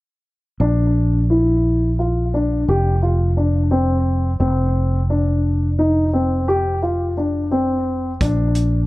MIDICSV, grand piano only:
0, 0, Header, 1, 2, 480
1, 0, Start_track
1, 0, Tempo, 692042
1, 418, Time_signature, 11, 3, 24, 8
1, 6149, End_track
2, 0, Start_track
2, 0, Title_t, "Grand piano"
2, 0, Program_c, 0, 0
2, 420, Note_on_c, 0, 62, 65
2, 820, Note_off_c, 0, 62, 0
2, 900, Note_on_c, 0, 64, 53
2, 1301, Note_off_c, 0, 64, 0
2, 1379, Note_on_c, 0, 65, 53
2, 1579, Note_off_c, 0, 65, 0
2, 1621, Note_on_c, 0, 62, 54
2, 1821, Note_off_c, 0, 62, 0
2, 1863, Note_on_c, 0, 67, 65
2, 2062, Note_off_c, 0, 67, 0
2, 2097, Note_on_c, 0, 65, 57
2, 2298, Note_off_c, 0, 65, 0
2, 2337, Note_on_c, 0, 62, 53
2, 2538, Note_off_c, 0, 62, 0
2, 2573, Note_on_c, 0, 60, 62
2, 2977, Note_off_c, 0, 60, 0
2, 3052, Note_on_c, 0, 60, 66
2, 3456, Note_off_c, 0, 60, 0
2, 3536, Note_on_c, 0, 62, 54
2, 3938, Note_off_c, 0, 62, 0
2, 4014, Note_on_c, 0, 63, 56
2, 4217, Note_off_c, 0, 63, 0
2, 4256, Note_on_c, 0, 60, 57
2, 4458, Note_off_c, 0, 60, 0
2, 4496, Note_on_c, 0, 67, 67
2, 4698, Note_off_c, 0, 67, 0
2, 4734, Note_on_c, 0, 65, 57
2, 4937, Note_off_c, 0, 65, 0
2, 4976, Note_on_c, 0, 62, 50
2, 5177, Note_off_c, 0, 62, 0
2, 5214, Note_on_c, 0, 60, 61
2, 5616, Note_off_c, 0, 60, 0
2, 5697, Note_on_c, 0, 62, 69
2, 6097, Note_off_c, 0, 62, 0
2, 6149, End_track
0, 0, End_of_file